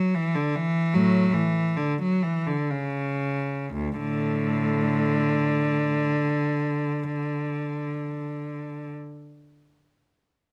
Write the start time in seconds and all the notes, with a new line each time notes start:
Already playing: F#3
0.14 E3
0.35 D3
0.55 E3
0.94 A2 F#3
1.34 E3
1.77 D3
2.02 F#3
2.23 E3
2.46 D3
2.70 C#3
3.73 D2
3.97 A2 D3